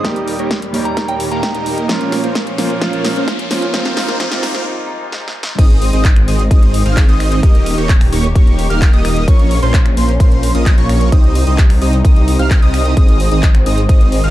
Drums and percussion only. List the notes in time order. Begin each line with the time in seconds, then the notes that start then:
0.05 kick, snare, closed hi-hat
0.16 closed hi-hat
0.28 open hi-hat
0.39 closed hi-hat
0.51 kick, snare, closed hi-hat
0.62 closed hi-hat
0.74 open hi-hat
0.85 closed hi-hat
0.97 kick, snare, closed hi-hat
1.08 closed hi-hat
1.20 open hi-hat
1.31 closed hi-hat
1.43 kick, snare, closed hi-hat
1.55 closed hi-hat
1.66 open hi-hat
1.78 closed hi-hat
1.89 kick, snare, closed hi-hat
2.01 closed hi-hat
2.12 snare, open hi-hat
2.24 closed hi-hat
2.35 kick, snare, closed hi-hat
2.47 closed hi-hat
2.58 snare, open hi-hat
2.70 closed hi-hat
2.82 kick, snare, closed hi-hat
2.93 closed hi-hat
3.05 snare, open hi-hat
3.16 closed hi-hat
3.28 kick, snare, closed hi-hat
3.39 closed hi-hat
3.51 snare, open hi-hat
3.62 closed hi-hat
3.74 kick, snare, closed hi-hat
3.85 snare, closed hi-hat
3.97 snare, open hi-hat
4.09 snare, closed hi-hat
4.20 kick, snare, closed hi-hat
4.32 snare, closed hi-hat
4.43 snare, open hi-hat
4.55 snare, closed hi-hat
5.12 snare
5.28 snare
5.43 snare
5.59 kick, closed hi-hat, crash
5.70 closed hi-hat
5.82 open hi-hat
5.93 closed hi-hat
6.05 kick, clap, closed hi-hat
6.16 finger snap, closed hi-hat
6.28 open hi-hat
6.39 closed hi-hat
6.51 kick, closed hi-hat
6.63 closed hi-hat
6.74 open hi-hat
6.86 closed hi-hat
6.97 kick, clap, closed hi-hat
7.09 closed hi-hat
7.20 finger snap, open hi-hat
7.32 closed hi-hat
7.43 kick, closed hi-hat
7.55 closed hi-hat
7.66 open hi-hat
7.78 closed hi-hat
7.89 kick, clap, closed hi-hat
8.01 finger snap, open hi-hat
8.13 open hi-hat
8.24 closed hi-hat
8.35 kick, closed hi-hat
8.47 closed hi-hat
8.59 open hi-hat
8.70 closed hi-hat
8.82 kick, clap, closed hi-hat
8.93 closed hi-hat
9.05 finger snap, open hi-hat
9.17 closed hi-hat
9.28 kick, closed hi-hat
9.39 closed hi-hat
9.51 open hi-hat
9.63 closed hi-hat
9.74 kick, clap, closed hi-hat
9.86 finger snap, closed hi-hat
9.97 open hi-hat
10.09 closed hi-hat
10.20 kick, closed hi-hat
10.32 closed hi-hat
10.43 open hi-hat
10.55 closed hi-hat
10.66 kick, clap, closed hi-hat
10.78 closed hi-hat
10.89 finger snap, open hi-hat
11.01 closed hi-hat
11.12 kick, closed hi-hat
11.24 closed hi-hat
11.35 open hi-hat
11.47 closed hi-hat
11.58 kick, clap, closed hi-hat
11.70 finger snap, open hi-hat
11.82 open hi-hat
11.93 closed hi-hat
12.05 kick, closed hi-hat
12.16 closed hi-hat
12.28 open hi-hat
12.39 closed hi-hat
12.51 kick, clap, closed hi-hat
12.62 closed hi-hat
12.74 finger snap, open hi-hat
12.85 closed hi-hat
12.97 kick, closed hi-hat
13.08 closed hi-hat
13.20 open hi-hat
13.32 closed hi-hat
13.43 kick, clap, closed hi-hat
13.55 finger snap, closed hi-hat
13.66 open hi-hat
13.78 closed hi-hat
13.89 kick, closed hi-hat
14.01 closed hi-hat
14.12 open hi-hat
14.24 closed hi-hat